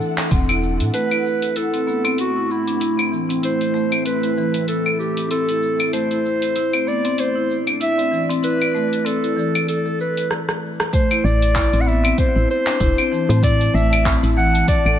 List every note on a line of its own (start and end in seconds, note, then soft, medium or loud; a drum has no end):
0.00 1.95 D4 medium
0.00 0.29 A4 medium
0.00 3.22 A4 medium
0.00 1.88 E5 medium
0.00 3.11 F#5 medium
0.00 cabasa medium
0.18 clap medium
0.18 open hi-hat soft
0.18 cabasa soft
0.31 0.81 E1 loud
0.31 0.47 C4 medium
0.31 kick loud
0.31 open hi-hat medium
0.31 cabasa soft
0.49 0.56 E4 medium
0.49 open hi-hat soft
0.49 cabasa soft
0.49 claves medium
0.63 cabasa medium
0.80 0.90 A2 loud
0.80 open hi-hat soft
0.80 cabasa soft
0.94 10.31 A3 medium
0.94 1.04 A3 medium
0.94 1.58 B4 loud
0.94 open hi-hat medium
0.94 cabasa soft
1.11 1.24 E4 medium
1.11 open hi-hat soft
1.11 cabasa soft
1.11 claves medium
1.26 cabasa medium
1.42 10.31 E4 medium
1.42 open hi-hat soft
1.42 cabasa soft
1.56 7.13 C4 medium
1.56 1.72 E4 medium
1.56 2.19 A4 medium
1.56 open hi-hat soft
1.56 cabasa soft
1.74 1.86 C4 medium
1.74 open hi-hat soft
1.74 cabasa soft
1.87 2.03 B3 medium
1.87 cabasa medium
2.05 2.18 C4 medium
2.05 open hi-hat soft
2.05 cabasa soft
2.05 claves medium
2.18 2.53 F#4 medium
2.18 open hi-hat soft
2.18 cabasa soft
2.36 2.49 E4 medium
2.36 cabasa soft
2.50 3.13 E4 medium
2.50 cabasa medium
2.67 2.79 D4 medium
2.67 open hi-hat soft
2.67 cabasa soft
2.80 2.97 E4 medium
2.80 open hi-hat soft
2.80 cabasa soft
2.98 3.11 C4 medium
2.98 open hi-hat soft
2.98 cabasa soft
2.98 claves medium
3.12 3.22 E3 medium
3.12 cabasa medium
3.29 3.42 C4 medium
3.29 open hi-hat soft
3.29 cabasa soft
3.43 3.73 E4 medium
3.43 4.03 C5 medium
3.43 open hi-hat soft
3.43 cabasa soft
3.61 open hi-hat soft
3.61 cabasa soft
3.74 4.04 A3 medium
3.74 cabasa medium
3.92 open hi-hat soft
3.92 cabasa soft
3.92 claves medium
4.05 4.22 C4 medium
4.05 4.64 B4 medium
4.05 open hi-hat soft
4.05 cabasa soft
4.23 4.32 E4 medium
4.23 open hi-hat soft
4.23 cabasa soft
4.37 4.47 E3 medium
4.37 cabasa medium
4.54 open hi-hat soft
4.54 cabasa soft
4.68 4.97 A4 medium
4.68 open hi-hat soft
4.68 cabasa soft
4.86 5.30 A4 medium
4.86 cabasa soft
4.86 claves medium
4.99 5.28 G4 medium
4.99 cabasa medium
5.17 open hi-hat soft
5.17 cabasa soft
5.31 5.47 C4 medium
5.31 5.89 A4 medium
5.31 open hi-hat soft
5.31 cabasa soft
5.49 5.56 E4 medium
5.49 open hi-hat soft
5.49 cabasa soft
5.63 cabasa medium
5.80 open hi-hat soft
5.80 cabasa soft
5.80 claves medium
5.93 6.03 A3 medium
5.93 6.89 C5 loud
5.93 open hi-hat soft
5.93 cabasa soft
6.11 6.24 E4 medium
6.11 open hi-hat soft
6.11 cabasa soft
6.26 cabasa medium
6.42 open hi-hat soft
6.42 cabasa soft
6.56 6.72 E4 medium
6.56 open hi-hat soft
6.56 cabasa soft
6.73 6.86 C4 medium
6.73 open hi-hat soft
6.73 cabasa soft
6.73 claves medium
6.87 7.03 B3 medium
6.87 7.21 D5 medium
6.87 cabasa medium
6.94 10.31 D5 medium
7.05 7.18 C4 medium
7.05 open hi-hat soft
7.05 cabasa soft
7.18 7.55 C5 loud
7.18 open hi-hat soft
7.18 cabasa soft
7.35 7.49 E4 medium
7.35 cabasa soft
7.50 cabasa medium
7.67 7.79 D4 medium
7.67 open hi-hat soft
7.67 cabasa soft
7.67 claves medium
7.80 7.97 E4 medium
7.80 8.27 E5 loud
7.80 open hi-hat soft
7.80 cabasa soft
7.98 8.11 C4 medium
7.98 open hi-hat soft
7.98 cabasa soft
8.11 8.22 E3 medium
8.11 cabasa medium
8.29 8.42 C4 medium
8.29 open hi-hat soft
8.29 cabasa soft
8.43 8.73 E4 medium
8.43 9.07 B4 loud
8.43 open hi-hat soft
8.43 cabasa soft
8.62 open hi-hat soft
8.62 cabasa soft
8.62 claves medium
8.75 9.05 A3 medium
8.75 cabasa medium
8.93 open hi-hat soft
8.93 cabasa soft
9.05 9.21 C4 medium
9.05 9.68 A4 medium
9.05 open hi-hat soft
9.05 cabasa soft
9.23 9.31 E4 medium
9.23 open hi-hat soft
9.23 cabasa soft
9.36 9.47 E3 medium
9.36 cabasa medium
9.55 open hi-hat soft
9.55 cabasa soft
9.55 claves medium
9.68 9.98 A4 medium
9.68 open hi-hat soft
9.68 cabasa soft
9.86 10.29 A4 medium
9.86 cabasa soft
10.00 10.29 B4 medium
10.00 cabasa medium
10.17 open hi-hat soft
10.17 cabasa soft
10.31 cross-stick soft
10.49 cross-stick medium
10.80 cross-stick medium
10.93 11.03 A3 medium
10.93 11.26 C5 medium
10.93 kick loud
10.93 open hi-hat medium
10.93 cabasa soft
11.11 11.24 E4 medium
11.11 open hi-hat soft
11.11 cabasa soft
11.11 claves medium
11.24 11.67 A1 medium
11.24 11.82 D5 loud
11.24 cabasa medium
11.42 open hi-hat soft
11.42 cabasa soft
11.56 11.72 E4 medium
11.56 kick loud
11.56 clap medium
11.56 open hi-hat medium
11.56 cabasa soft
11.66 14.99 A5 medium
11.73 12.13 A1 medium
11.73 11.86 C4 medium
11.73 open hi-hat soft
11.73 cabasa soft
11.81 11.89 F#5 medium
11.86 12.03 B3 medium
11.86 12.19 E5 medium
11.86 cabasa medium
12.04 12.17 C4 loud
12.04 open hi-hat soft
12.04 cabasa soft
12.04 claves medium
12.18 12.48 C5 loud
12.18 kick loud
12.18 open hi-hat medium
12.18 cabasa soft
12.36 12.46 A1 medium
12.36 12.49 E4 medium
12.36 cabasa soft
12.50 13.40 C5 loud
12.50 cabasa medium
12.67 12.79 D4 medium
12.67 clap medium
12.67 open hi-hat soft
12.67 cabasa soft
12.80 12.94 E1 medium
12.80 12.96 E4 medium
12.80 kick loud
12.80 open hi-hat medium
12.80 cabasa soft
12.98 13.11 C4 medium
12.98 open hi-hat soft
12.98 cabasa soft
12.98 claves medium
13.12 13.22 E3 medium
13.12 cabasa medium
13.29 13.69 A2 medium
13.29 13.43 C4 loud
13.29 open hi-hat soft
13.29 cabasa soft
13.43 13.73 E4 medium
13.43 13.76 D5 loud
13.43 kick loud
13.43 open hi-hat medium
13.43 cabasa soft
13.61 open hi-hat soft
13.61 cabasa soft
13.74 14.17 A1 loud
13.74 14.04 A3 medium
13.74 14.11 E5 loud
13.74 cabasa medium
13.93 open hi-hat soft
13.93 cabasa soft
13.93 claves medium
14.05 14.22 C4 medium
14.05 kick loud
14.05 clap medium
14.05 open hi-hat medium
14.05 cabasa soft
14.23 14.63 A1 medium
14.23 14.31 E4 medium
14.23 open hi-hat soft
14.23 cabasa soft
14.37 14.47 E3 medium
14.37 14.66 F#5 loud
14.37 cabasa medium
14.55 open hi-hat soft
14.55 cabasa soft
14.68 14.99 D5 loud
14.68 kick loud
14.68 open hi-hat medium
14.68 cabasa soft
14.85 14.96 A1 medium
14.85 14.99 A4 medium
14.85 cabasa soft
14.85 claves medium